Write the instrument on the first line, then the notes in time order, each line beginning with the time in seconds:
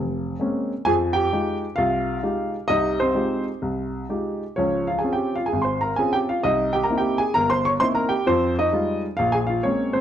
grand piano
Already playing: F1
0.40 G#3 A#3 C4 C#4
0.85 F2 F3 G#4 G#5
1.13 G4 G5
1.33 G#3 D#4 F4 G4
1.76 C2 F4 F5
2.23 G#3 D#4 F4 G4
2.68 C2 C3 D#4 D#5
3.00 C4 C5
3.15 G#3 D#4 F4 G4
3.62 C2
4.09 G#3 D#4 F4 G4
4.56 C#2 F3 C#4 C#5
4.87 F4 F5
4.99 G#4 G#5
5.04 C4 C#4 F4
5.13 G4 G5
5.36 F4 F5
5.46 G#4 G#5
5.53 G#1
5.62 C5 C6
5.81 A#4 A#5
5.96 C4 C#4 F4 G#4 G#5
6.13 G4 G5
6.29 F4 F5
6.43 C2 D#4 D#5
6.73 G4 G5
6.84 A#4 A#5
6.90 A#3 C4 D#4 E4
6.98 G4 G5
7.18 G#4 G#5
7.34 G1 A#4 A#5
7.50 C5 C6
7.65 C#5 C#6
7.80 A#3 C4 D#4 E4 C5 C6
7.95 A#4 A#5
8.09 G4 G5
8.27 F2 F3 C4 C5
8.59 D#4 D#5
8.73 G3 G#3 D#4 F4
9.17 A#1 F4 F5
9.32 G#4 G#5
9.47 F4 F5
9.63 G#3 A#3 C4 C#4 C#5
9.93 C4 C5